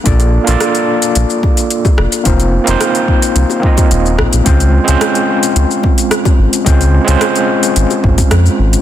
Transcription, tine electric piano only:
0.04 A#3 D4 F4 A4 D5
0.44 A#3 D4 F4
0.49 A4 D5
2.24 A#3 C4 D#4 F4 C5
2.64 A#3 C4 D#4
2.69 F4 C5
3.60 A#3 C4 D#4
3.65 F4 D#5
4.44 G#3 C4 C#4 F4 C5
4.84 G#3 C4 C#4
4.89 F4 C5
6.64 G#3 C4 C#4 F4 C5
7.04 G#3 C4 C#4
7.09 F4 C5

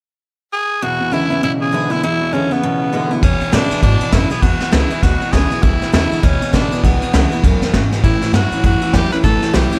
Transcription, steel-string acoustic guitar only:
0.82 E2
1.11 D3 G#3 B3 E4
1.30 B3 E4
1.43 B2
1.72 D3 G#3 B3 E4
1.90 B3 E4
2.03 E2
2.33 D3 G#3 B3 E4
2.51 B3 E4
2.63 B2
2.93 D3 G#3 B3 E4
3.11 B3 E4
3.52 D3 G#3 B3 E4
3.83 B2
4.12 D3 G#3 B3 E4
4.30 B3 E4
4.43 E2
4.72 D3 G#3 B3 E4
4.90 B3 E4
5.03 B2
5.33 D3 G#3 B3 E4
5.50 B3 E4
5.63 E2
5.92 D3 G#3 B3 E4
6.23 B2
6.53 D3 G#3 B3 E4
6.71 B3 E4
6.84 E2
7.13 D3 G#3 B3 E4
7.31 B3 E4
7.44 F#2
7.74 G#2
8.04 A2
8.33 E3 G3 C#4 E4
8.51 C#4 E4
8.64 E2
8.94 E3 G3 C#4 E4
9.12 C#4 E4
9.24 A2
9.53 E3 G3 C#4 E4
9.71 C#4 E4

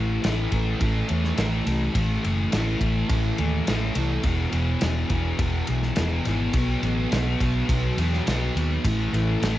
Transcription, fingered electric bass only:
Already playing: A1
0.24 A1
0.52 A1
0.80 A1
1.10 E2
1.38 A1
1.66 C2
1.95 A1
2.25 F#1
2.53 A1
2.81 A1
3.09 A1
3.39 D#2
3.68 A1
3.96 C2
4.24 E1
4.53 E1
4.82 E1
5.10 E1
5.39 E1
5.69 B1
5.97 E1
6.27 G#1
6.54 B1
6.83 A1
7.12 B1
7.41 B1
7.69 B1
7.97 E2
8.27 B1
8.55 D#2
8.85 A1
9.13 A1
9.42 A1

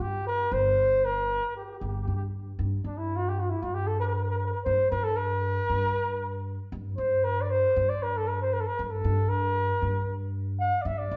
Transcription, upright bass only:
0.00 G2
0.52 G1
1.81 G1
2.07 G2
2.59 G2
2.84 G2
3.62 G2
4.66 G2
4.92 G2
5.70 G2
6.72 G2
6.98 G2
7.76 G2
8.79 G2
9.04 G2
9.82 G2
10.85 G2
11.11 G2

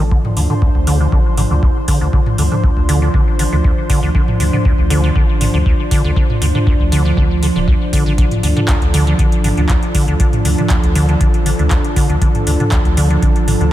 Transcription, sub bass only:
0.00 A1
0.37 D2
0.75 D2
1.12 A1
1.51 D2
2.01 D2
2.38 D2
2.77 D2
3.14 A1
3.52 D2
4.03 D2
4.40 D2
4.78 D2
5.16 A1
5.54 D2
6.04 D2
6.42 D2
6.80 D2
7.17 D2
7.56 D1
8.06 A1
8.43 D2
8.82 D2
9.19 A1
9.57 D2
10.08 D2
10.45 D2
10.83 D2
11.21 A1
11.59 D2
12.10 D2
12.47 D2
12.85 D2
13.22 A1
13.61 D2

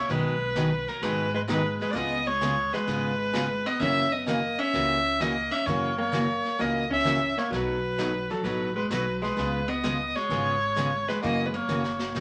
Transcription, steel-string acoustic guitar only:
0.10 B2 D#3 F#3 B3 D#4 G#4
0.56 B2 D#3 F#3 B3 D#4 G#4
1.03 B2 D#3 F#3 B3 D#4 G#4
1.48 B2 D#3 F#3 B3 D#4 G#4
1.95 C#3 G#3 B3 F4 G#4
2.41 C#3 G#3 B3 F4 G#4
2.87 C#3 G#3 B3 F4 G#4
3.33 C#3 G#3 B3 F4 G#4
3.80 C#3 E3 A#3 C#4 F#4
4.26 C#3 E3 A#3 C#4 F#4
4.73 C#3 E3 A#3 C#4 F#4
5.20 C#3 E3 A#3 C#4 F#4
5.66 C#3 E3 A#3 C#4 F#4
6.12 C#3 E3 A#3 C#4 F#4
6.59 C#3 E3 A#3 C#4 F#4
7.04 C#3 E3 A#3 C#4 F#4
7.52 B2 F#3 A3 D#4 F#4
7.98 B2 F#3 A3 D#4 F#4
8.45 B2 F#3 A3 D#4 F#4
8.91 B2 F#3 A3 D#4 F#4
9.37 C#3 G#3 B3 F4 G#4
9.84 C#3 G#3 B3 F4 G#4
10.30 C#3 G#3 B3 F4 G#4
10.76 C#3 G#3 B3 F4 G#4
11.23 C#3 E3 A#3 C#4 F#4
11.69 C#3 E3 A#3 C#4 F#4
12.16 C#3 E3 A#3 C#4 F#4

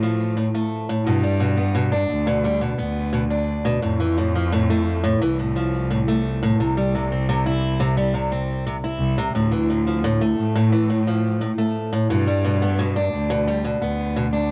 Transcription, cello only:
Already playing: A2
1.06 G2
2.10 D2
2.79 D2
3.83 F2
5.21 C2
6.58 C2
8.99 C2
9.34 D2
10.38 A2
12.10 G2
13.14 D2
13.81 D2

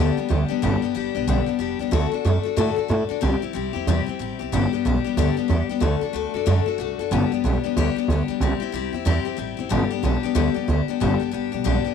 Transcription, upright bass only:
Already playing: D2
0.18 muted upright bass stroke
0.30 D2
0.51 muted upright bass stroke
0.63 G1
0.82 muted upright bass stroke
0.95 G1
1.15 B1
1.27 B1
1.48 muted upright bass stroke
1.59 F1
1.79 C#2
1.92 D2
2.13 muted upright bass stroke
2.25 F#2
2.45 muted upright bass stroke
2.57 A2
2.77 muted upright bass stroke
2.90 A2
3.10 muted upright bass stroke
3.22 C2
3.43 muted upright bass stroke
3.55 C2
3.75 E2
3.87 E2
4.07 muted upright bass stroke
4.19 A1
4.40 C2
4.52 G1
4.73 muted upright bass stroke
4.85 B1
5.05 muted upright bass stroke
5.17 D2
5.37 muted upright bass stroke
5.49 E2
5.69 muted upright bass stroke
5.81 D2
6.02 muted upright bass stroke
6.14 D2
6.34 F#2
6.47 F#2
6.66 muted upright bass stroke
6.79 C2
6.99 F#1
7.11 G1
7.31 muted upright bass stroke
7.44 B1
7.64 muted upright bass stroke
7.76 D2
7.96 muted upright bass stroke
8.08 D2
8.28 muted upright bass stroke
8.40 C2
8.60 muted upright bass stroke
8.73 C2
8.93 E2
9.06 E2
9.26 muted upright bass stroke
9.38 A1
9.59 F#1
9.71 G1
10.03 B1
10.24 muted upright bass stroke
10.35 D2
10.55 muted upright bass stroke
10.68 D2
10.88 muted upright bass stroke
11.01 G1
11.21 muted upright bass stroke
11.33 G1
11.53 B1
11.66 B1
11.85 muted upright bass stroke

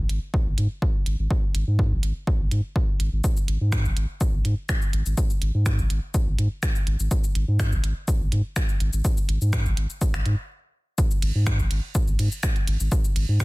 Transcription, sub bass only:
0.10 G#1
0.46 G#1
0.58 G#2
1.06 G#1
1.19 G#1
1.55 G#1
1.67 G#2
1.92 G#1
2.03 G#1
2.40 G#1
2.51 G#2
3.00 G#1
3.12 G#1
3.48 G#1
3.61 G#2
3.85 G#1
3.97 G#1
4.33 G#1
4.45 G#2
4.93 G#1
5.06 G#1
5.42 G#1
5.54 G#2
5.79 G#1
5.90 G#1
6.27 G#1
6.38 G#2
6.87 G#1
7.00 G#1
7.35 G#1
7.48 G#2
7.72 G#1
7.84 G#1
8.21 G#1
8.32 G#2
8.81 G#1
8.93 G#1
9.29 G#1
9.41 G#2
9.66 G#1
9.77 G#1
10.14 G#1
10.26 G#2
11.22 G#1
11.35 G#2
11.59 G#1
11.71 G#1
12.08 G#1
12.19 G#2
12.68 G#1
12.80 G#1
13.16 G#1
13.29 G#2

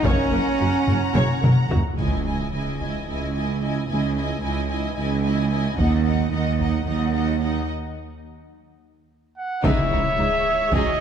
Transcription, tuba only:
0.04 F#1
0.32 F#1
0.60 F#1
0.88 F#1
1.15 F#1
1.43 F#1
1.70 F#1
1.98 C#2
2.52 C#2
3.07 C#2
3.89 C#2
4.43 C#2
4.97 C#2
5.77 D#2
6.31 D#2
6.86 D#2
9.64 C#2
9.92 C#2
10.19 C#2
10.73 C#2

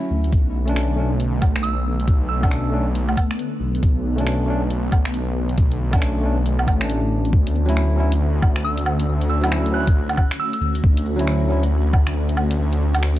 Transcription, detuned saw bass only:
0.11 D2
0.33 B1
1.42 B1
2.08 B1
3.60 B1
3.83 B1
4.92 B1
5.57 B1
6.67 A1
7.33 D2
8.42 D2
9.08 D2
10.61 D2
10.84 D2
11.93 D2
12.58 D2

